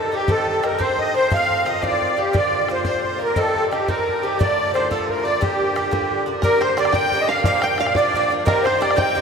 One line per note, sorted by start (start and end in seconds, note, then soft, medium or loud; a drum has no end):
0.00 0.13 G2 medium
0.00 0.13 D#3 medium
0.00 0.12 A#3 medium
0.00 0.11 D#4 medium
0.00 0.12 A4 medium
0.00 0.14 A4 medium
0.12 0.27 D#3 soft
0.12 0.28 A#3 soft
0.12 0.28 D#4 medium
0.12 0.30 G4 medium
0.28 0.61 G2 medium
0.28 0.62 D#3 medium
0.28 0.63 C4 medium
0.28 0.63 D#4 medium
0.28 0.65 A4 medium
0.28 0.47 A4 loud
0.28 bodhran medium
0.48 0.65 A4 medium
0.48 bodhran soft
0.63 0.79 G2 medium
0.63 0.78 D#3 medium
0.63 0.78 C4 medium
0.63 0.77 D#4 medium
0.63 0.81 A#4 medium
0.63 0.82 A#4 medium
0.63 bodhran medium
0.78 1.15 G2 medium
0.78 1.15 D#3 medium
0.78 1.14 C4 medium
0.78 1.13 D#4 medium
0.78 1.01 C5 medium
0.78 0.99 C5 medium
0.78 bodhran medium
0.90 bodhran soft
0.98 1.16 D#5 medium
0.98 1.15 D#5 loud
0.98 bodhran soft
1.15 1.29 D#3 soft
1.15 1.30 C4 soft
1.15 1.31 D#4 soft
1.15 1.31 C5 medium
1.15 1.32 C5 loud
1.30 1.64 A2 medium
1.30 1.66 D#3 medium
1.30 1.66 C4 medium
1.30 1.66 F4 medium
1.30 1.68 F5 medium
1.30 1.69 F5 loud
1.30 bodhran medium
1.51 bodhran soft
1.66 1.82 A2 medium
1.66 1.82 D#3 medium
1.66 1.81 C4 medium
1.66 1.81 F4 medium
1.66 1.84 D#5 medium
1.66 1.83 D#5 medium
1.66 bodhran medium
1.82 2.18 A2 medium
1.82 2.17 D#3 medium
1.82 2.16 C4 medium
1.82 2.15 F4 medium
1.82 2.20 D5 medium
1.82 bodhran medium
1.87 2.21 D5 medium
1.92 bodhran soft
2.02 bodhran soft
2.16 2.33 D#3 soft
2.16 2.34 C4 soft
2.16 2.33 F4 medium
2.16 2.35 G4 medium
2.33 2.68 A#2 medium
2.33 2.68 D3 medium
2.33 2.69 A#3 medium
2.33 2.69 F4 medium
2.33 2.65 D5 medium
2.33 2.68 D5 loud
2.33 bodhran medium
2.53 bodhran soft
2.65 2.71 D5 medium
2.65 bodhran medium
2.69 2.85 A#2 medium
2.69 2.85 D3 medium
2.69 2.84 A#3 medium
2.69 2.84 F4 medium
2.69 2.83 C5 medium
2.69 2.87 C5 medium
2.84 3.20 A#2 soft
2.84 3.20 D3 medium
2.84 3.19 A#3 medium
2.84 3.18 F4 medium
2.84 3.02 C5 medium
2.84 bodhran medium
2.89 3.20 C5 medium
2.95 bodhran soft
3.03 3.21 C5 medium
3.03 bodhran soft
3.19 3.36 D3 soft
3.19 3.36 A#3 soft
3.19 3.36 F4 soft
3.19 3.37 A#4 medium
3.24 3.39 A#4 medium
3.36 3.70 G2 medium
3.36 3.70 D#3 medium
3.36 3.71 C4 medium
3.36 3.72 D#4 medium
3.36 3.53 A4 medium
3.36 3.70 A4 loud
3.36 bodhran medium
3.53 3.72 A4 medium
3.53 bodhran soft
3.70 3.88 G2 soft
3.70 3.88 D#3 medium
3.70 3.87 C4 medium
3.70 3.87 D#4 medium
3.70 3.88 G4 medium
3.70 3.89 G4 medium
3.70 bodhran medium
3.86 4.23 G2 medium
3.86 4.23 D#3 medium
3.86 4.23 C4 medium
3.86 4.22 D#4 medium
3.86 4.24 A#4 medium
3.86 bodhran medium
3.99 bodhran soft
4.09 bodhran soft
4.22 4.40 D#3 soft
4.22 4.40 C4 soft
4.22 4.39 D#4 medium
4.22 4.39 G4 medium
4.22 4.38 G4 medium
4.38 4.73 A2 medium
4.38 4.74 D3 medium
4.38 4.74 A3 medium
4.38 4.75 F4 medium
4.38 4.90 D5 medium
4.38 4.72 D5 loud
4.38 bodhran medium
4.58 bodhran soft
4.74 4.90 A2 medium
4.74 4.90 D3 medium
4.74 4.89 A3 medium
4.74 4.90 F4 medium
4.74 4.89 C5 medium
4.74 bodhran medium
4.90 5.26 A2 medium
4.90 5.26 D3 medium
4.90 5.24 A3 medium
4.90 5.24 F4 medium
4.90 5.07 A4 medium
4.90 5.09 A4 medium
4.90 bodhran medium
5.00 bodhran soft
5.09 5.25 A#4 medium
5.09 5.24 A#4 medium
5.09 bodhran soft
5.24 5.40 D3 soft
5.24 5.41 A3 soft
5.24 5.41 F4 medium
5.24 5.42 D5 medium
5.24 5.42 D5 loud
5.40 5.74 G2 medium
5.40 5.75 D3 medium
5.40 5.75 A#3 medium
5.40 5.77 D4 medium
5.40 6.27 G4 medium
5.40 6.24 G4 medium
5.40 bodhran medium
5.61 bodhran soft
5.76 5.91 G2 medium
5.76 5.91 D3 medium
5.76 5.90 A#3 medium
5.76 5.90 D4 medium
5.76 bodhran medium
5.91 6.27 G2 medium
5.91 6.28 D3 medium
5.91 6.27 A#3 medium
5.91 6.26 D4 medium
5.91 bodhran medium
6.01 bodhran soft
6.11 bodhran soft
6.26 6.42 D3 soft
6.26 6.43 A#3 medium
6.26 6.43 D4 medium
6.42 6.62 G2 medium
6.42 6.60 D3 medium
6.42 6.59 A#3 medium
6.42 6.59 D4 medium
6.42 6.60 A#4 medium
6.42 6.63 A#4 medium
6.42 6.62 A#4 loud
6.42 bodhran medium
6.61 6.77 D3 medium
6.61 6.77 A#3 medium
6.61 6.77 D4 medium
6.61 6.76 C5 medium
6.61 6.78 C5 medium
6.61 6.79 C5 loud
6.61 bodhran medium
6.77 6.94 G2 medium
6.77 6.94 D3 medium
6.77 6.94 A#3 medium
6.77 6.93 D4 medium
6.77 6.92 D5 medium
6.77 6.95 D5 medium
6.77 6.95 D5 loud
6.77 bodhran medium
6.85 bodhran medium
6.92 7.12 G2 medium
6.92 7.13 D3 medium
6.92 7.13 A#3 medium
6.92 7.13 D4 medium
6.92 7.26 G5 medium
6.92 7.30 G5 medium
6.92 7.22 G5 loud
6.92 bodhran medium
7.12 7.29 G2 medium
7.12 7.30 D3 medium
7.12 7.30 A#3 medium
7.12 7.28 D4 medium
7.12 bodhran soft
7.21 7.29 D#5 loud
7.28 7.46 D3 soft
7.28 7.45 A#3 medium
7.28 7.45 D4 medium
7.28 7.44 F5 loud
7.28 7.45 F5 loud
7.44 7.64 A#2 medium
7.44 7.64 F3 medium
7.44 7.63 A#3 medium
7.44 7.62 D4 medium
7.44 7.64 F5 medium
7.44 7.63 F5 loud
7.44 7.65 F5 loud
7.44 bodhran medium
7.53 bodhran soft
7.62 7.80 F3 soft
7.62 7.80 A#3 medium
7.62 7.80 D4 medium
7.62 7.81 G5 medium
7.62 7.80 G5 loud
7.62 7.80 G5 medium
7.62 bodhran medium
7.78 7.96 A#2 medium
7.78 7.97 F3 medium
7.78 7.97 A#3 medium
7.78 7.98 F5 medium
7.78 7.96 F5 loud
7.78 7.95 F5 loud
7.78 bodhran medium
7.82 7.96 D4 medium
7.86 bodhran medium
7.95 8.14 A#2 medium
7.95 8.14 F3 medium
7.95 8.16 A#3 medium
7.95 8.15 D4 medium
7.95 8.32 D5 medium
7.95 8.35 D5 medium
7.95 8.33 D5 loud
7.95 bodhran loud
8.14 8.31 A#2 medium
8.14 8.31 F3 medium
8.14 8.31 A#3 medium
8.14 8.29 D4 medium
8.14 bodhran soft
8.30 8.45 F3 soft
8.30 8.46 A#3 medium
8.30 8.46 D4 medium
8.45 8.65 G2 medium
8.45 8.64 D#3 medium
8.45 8.64 C4 medium
8.45 8.63 D#4 medium
8.45 8.65 A#4 loud
8.45 8.67 A#4 medium
8.45 8.66 A#4 loud
8.45 bodhran medium
8.57 bodhran soft
8.64 8.80 D#3 soft
8.64 8.80 C4 medium
8.64 8.81 D#4 medium
8.64 8.80 C5 loud
8.64 8.83 C5 medium
8.64 8.81 C5 medium
8.64 bodhran medium
8.81 8.97 G2 medium
8.81 8.96 D#3 medium
8.81 8.96 C4 medium
8.81 8.95 D#4 medium
8.81 8.99 D5 medium
8.81 8.98 D5 loud
8.81 8.97 D5 medium
8.81 bodhran medium
8.91 bodhran medium
8.96 9.14 G2 medium
8.96 9.14 D#3 medium
8.96 9.15 C4 medium
8.96 9.15 D#4 medium
8.96 9.21 G5 medium
8.96 9.21 G5 loud
8.96 9.21 G5 medium
8.96 bodhran medium
9.15 9.21 G2 medium
9.15 9.21 D#3 medium
9.15 9.21 C4 medium
9.15 9.21 D#4 medium
9.15 bodhran soft